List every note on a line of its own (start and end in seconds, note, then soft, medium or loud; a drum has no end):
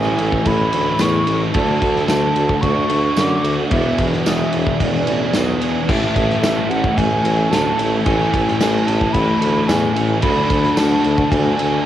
0.00 0.13 A1 loud
0.00 0.45 A2 medium
0.00 1.52 A2 medium
0.00 0.46 E3 medium
0.00 0.73 E3 medium
0.00 1.53 E3 loud
0.00 0.21 A3 medium
0.00 0.46 A3 medium
0.00 1.53 A3 loud
0.00 0.19 C#4 medium
0.00 0.20 C#4 medium
0.00 0.16 E4 medium
0.00 1.00 G#4 medium
0.00 0.48 G#5 medium
0.17 0.40 A1 medium
0.17 0.73 E3 medium
0.17 0.70 A3 medium
0.17 0.47 C#4 medium
0.17 0.49 E4 medium
0.17 ride medium
0.21 0.47 A3 medium
0.32 kick medium
0.46 0.67 A1 loud
0.46 1.00 A2 medium
0.46 0.99 E3 medium
0.46 0.74 A3 loud
0.46 0.72 C#4 loud
0.46 1.03 B5 loud
0.46 kick loud
0.46 ride loud
0.50 0.71 E4 loud
0.71 0.94 D2 medium
0.71 1.00 E3 medium
0.71 1.00 A3 medium
0.71 1.01 C#4 medium
0.71 1.02 E4 medium
0.71 ride medium
0.75 1.00 A3 medium
0.99 1.21 E2 medium
0.99 1.52 A2 medium
0.99 1.53 E3 medium
0.99 1.29 A3 medium
0.99 1.27 C#4 medium
0.99 1.55 G#4 medium
0.99 1.42 C#6 loud
0.99 snare loud
0.99 ride loud
0.99 tambourine loud
1.03 1.26 E4 medium
1.27 1.48 A1 medium
1.27 1.52 A3 medium
1.27 1.53 C#4 medium
1.27 1.53 E4 medium
1.27 ride medium
1.53 1.75 D2 medium
1.53 2.07 D3 medium
1.53 2.90 F#3 medium
1.53 1.84 A3 loud
1.53 1.83 D4 loud
1.53 1.80 F#4 loud
1.53 2.04 A5 loud
1.53 kick loud
1.53 ride loud
1.81 2.02 D2 medium
1.81 2.08 A3 medium
1.81 2.10 D4 medium
1.81 2.11 F#4 medium
1.81 kick medium
1.81 ride medium
1.96 snare soft
2.08 2.29 D2 loud
2.08 2.61 D3 medium
2.08 2.38 A3 medium
2.08 2.37 D4 medium
2.08 2.34 F#4 medium
2.08 2.63 A5 loud
2.08 snare loud
2.08 ride loud
2.08 tambourine loud
2.35 2.56 D2 medium
2.35 2.63 A3 medium
2.35 2.64 D4 medium
2.35 2.65 F#4 medium
2.35 ride medium
2.49 kick medium
2.61 2.83 D2 loud
2.61 3.15 D3 loud
2.61 2.92 A3 medium
2.61 2.91 D4 loud
2.61 3.15 C#6 loud
2.61 kick loud
2.61 ride loud
2.66 2.89 F#4 loud
2.89 3.10 D2 medium
2.89 3.17 D4 medium
2.89 3.19 F#4 medium
2.89 ride medium
2.93 3.16 A3 medium
3.15 3.37 F#2 medium
3.15 3.69 D3 medium
3.15 3.47 A3 medium
3.15 3.45 D4 medium
3.15 3.26 C#6 loud
3.15 snare loud
3.15 ride loud
3.15 tambourine loud
3.20 3.43 F#4 medium
3.26 3.57 D6 loud
3.43 3.64 D2 medium
3.43 3.71 A3 medium
3.43 3.71 D4 medium
3.43 3.70 F#4 medium
3.43 ride medium
3.48 3.72 A3 medium
3.70 3.92 E1 loud
3.70 4.24 E2 medium
3.70 5.87 E2 medium
3.70 3.99 B2 medium
3.70 5.87 B2 loud
3.70 4.23 E3 loud
3.70 4.00 B3 loud
3.70 3.98 D4 loud
3.70 3.96 G#4 loud
3.70 4.05 E5 loud
3.70 kick loud
3.70 ride loud
3.98 4.19 E1 medium
3.98 4.26 B2 medium
3.98 4.27 E3 medium
3.98 4.26 D4 medium
3.98 4.27 G#4 medium
3.98 kick medium
3.98 ride medium
4.02 4.25 B3 medium
4.13 snare soft
4.25 4.45 E1 medium
4.25 4.80 E2 medium
4.25 4.55 B2 medium
4.25 4.79 E3 medium
4.25 4.55 B3 medium
4.25 4.53 D4 medium
4.25 4.85 E5 medium
4.25 snare loud
4.25 ride loud
4.25 tambourine loud
4.29 4.51 G#4 medium
4.52 4.73 E1 medium
4.52 5.10 B2 medium
4.52 5.08 E3 medium
4.52 4.80 B3 medium
4.52 4.81 D4 medium
4.52 4.82 G#4 medium
4.52 ride medium
4.67 kick medium
4.80 5.01 E1 loud
4.80 5.32 E3 loud
4.80 5.09 B3 loud
4.80 5.08 D4 loud
4.80 5.06 G#4 loud
4.80 5.36 D5 medium
4.80 kick medium
4.80 ride loud
5.07 5.27 A1 medium
5.07 5.36 E3 medium
5.07 5.34 B3 medium
5.07 5.35 D4 medium
5.07 5.36 G#4 medium
5.07 ride medium
5.12 5.34 B2 medium
5.33 5.55 B1 medium
5.33 5.87 E2 medium
5.33 5.87 B2 medium
5.33 5.87 E3 medium
5.33 5.63 B3 medium
5.33 5.61 D4 medium
5.33 snare loud
5.33 ride loud
5.33 tambourine loud
5.38 5.59 G#4 medium
5.60 5.88 B3 medium
5.60 5.87 D4 medium
5.60 5.86 G#4 medium
5.60 ride medium
5.87 6.09 A1 loud
5.87 6.97 A2 loud
5.87 6.98 E3 loud
5.87 6.19 A3 loud
5.87 6.17 C#4 loud
5.87 6.16 E4 loud
5.87 6.38 E5 medium
5.87 kick loud
5.87 crash loud
5.92 6.15 A4 loud
6.15 6.36 A1 medium
6.15 6.44 E3 medium
6.15 6.44 C#4 medium
6.15 6.45 E4 medium
6.15 6.45 A4 medium
6.15 kick medium
6.15 ride medium
6.19 6.42 A3 medium
6.30 snare soft
6.42 6.63 A1 medium
6.42 7.50 A2 medium
6.42 6.72 E3 medium
6.42 6.73 A3 medium
6.42 6.72 C#4 medium
6.42 6.71 E5 medium
6.42 snare loud
6.42 ride loud
6.42 tambourine loud
6.46 6.72 E4 medium
6.46 6.70 A4 loud
6.69 6.90 A1 medium
6.69 7.26 E3 medium
6.69 6.99 C#4 medium
6.69 6.99 E4 medium
6.69 7.00 A4 medium
6.69 6.99 F#5 medium
6.69 ride medium
6.74 6.98 A3 medium
6.84 kick medium
6.97 7.18 A1 medium
6.97 7.51 A2 loud
6.97 7.52 E3 medium
6.97 7.28 A3 loud
6.97 7.27 C#4 loud
6.97 7.25 E4 loud
6.97 7.25 A4 loud
6.97 7.53 G#5 loud
6.97 kick medium
6.97 ride loud
7.24 7.45 A1 medium
7.24 7.51 E3 medium
7.24 7.51 A3 medium
7.24 7.52 C#4 medium
7.24 7.53 E4 medium
7.24 7.55 A4 medium
7.24 ride medium
7.50 7.71 D2 loud
7.50 8.05 A2 medium
7.50 8.07 E3 medium
7.50 7.82 A3 medium
7.50 7.80 C#4 medium
7.50 7.79 E4 medium
7.50 7.92 A5 loud
7.50 snare loud
7.50 ride loud
7.50 tambourine loud
7.55 7.79 A4 medium
7.78 7.99 A1 medium
7.78 8.07 A3 medium
7.78 8.08 C#4 medium
7.78 8.07 E4 medium
7.78 8.09 A4 medium
7.78 ride medium
8.05 8.27 A1 loud
8.05 8.60 A2 medium
8.05 8.60 E3 loud
8.05 8.37 A3 loud
8.05 8.36 C#4 loud
8.05 8.34 E4 loud
8.05 8.56 G#5 loud
8.05 kick loud
8.05 ride loud
8.09 8.34 A4 loud
8.33 8.54 A1 medium
8.33 8.60 E3 medium
8.33 8.62 A3 medium
8.33 8.61 C#4 medium
8.33 8.61 E4 medium
8.33 8.62 A4 medium
8.33 kick medium
8.33 ride medium
8.38 8.59 A3 medium
8.48 snare soft
8.60 8.81 A1 loud
8.60 9.14 A2 medium
8.60 8.89 E3 loud
8.60 8.90 A3 medium
8.60 8.89 C#4 medium
8.60 8.87 E4 medium
8.60 8.87 A4 medium
8.60 8.89 G#5 loud
8.60 snare loud
8.60 ride loud
8.60 tambourine loud
8.86 9.08 A1 loud
8.86 9.43 E3 medium
8.86 9.40 A3 medium
8.86 9.14 C#4 medium
8.86 9.14 E4 medium
8.86 9.15 A4 medium
8.86 9.14 A5 loud
8.86 ride medium
8.90 9.13 A3 medium
9.01 kick medium
9.13 9.35 A1 medium
9.13 9.68 A2 medium
9.13 9.68 E3 loud
9.13 9.42 A3 loud
9.13 9.41 C#4 loud
9.13 9.40 E4 loud
9.13 9.38 A4 loud
9.13 9.69 B5 loud
9.13 kick loud
9.13 ride loud
9.40 9.62 D2 medium
9.40 9.66 A3 medium
9.40 9.68 C#4 medium
9.40 9.69 E4 medium
9.40 9.69 A4 medium
9.40 ride loud
9.44 9.69 E3 medium
9.67 9.89 E2 medium
9.67 10.21 A2 medium
9.67 10.22 E3 medium
9.67 9.98 A3 medium
9.67 9.96 C#4 medium
9.67 9.95 E4 medium
9.67 9.94 A4 medium
9.67 10.21 G#5 loud
9.67 snare loud
9.67 ride loud
9.67 tambourine loud
9.72 10.22 A3 medium
9.95 10.16 A1 medium
9.95 10.21 A3 medium
9.95 10.22 C#4 medium
9.95 10.22 E4 medium
9.95 10.21 A4 medium
9.95 ride medium
10.21 10.44 D2 loud
10.21 10.76 D3 loud
10.21 11.59 F#3 medium
10.21 10.75 A3 loud
10.21 10.52 D4 loud
10.21 10.50 F#4 loud
10.21 10.48 A4 loud
10.21 10.78 B5 loud
10.21 kick loud
10.21 ride loud
10.49 10.70 D2 medium
10.49 11.29 A3 medium
10.49 10.77 A3 medium
10.49 10.77 D4 medium
10.49 10.77 F#4 medium
10.49 10.79 A4 medium
10.49 kick medium
10.49 ride medium
10.63 snare soft
10.76 10.98 D2 medium
10.76 11.31 D3 medium
10.76 11.31 A3 medium
10.76 11.07 D4 medium
10.76 11.05 F#4 medium
10.76 11.02 A4 medium
10.76 11.32 A5 loud
10.76 snare loud
10.76 ride loud
10.76 tambourine loud
11.03 11.25 D2 loud
11.03 11.59 A3 medium
11.03 11.56 D4 medium
11.03 11.32 F#4 medium
11.03 11.33 A4 medium
11.03 ride medium
11.08 11.32 D4 medium
11.18 kick medium
11.31 11.52 D2 loud
11.31 11.86 D3 loud
11.31 11.85 A3 loud
11.31 11.61 D4 loud
11.31 11.59 F#4 loud
11.31 11.86 G#5 loud
11.31 kick loud
11.31 ride loud
11.35 11.58 A4 loud
11.58 11.79 D2 medium
11.58 11.84 A3 medium
11.58 11.85 D4 medium
11.58 11.86 F#4 medium
11.58 11.86 A4 medium
11.58 ride medium
11.62 11.86 D4 medium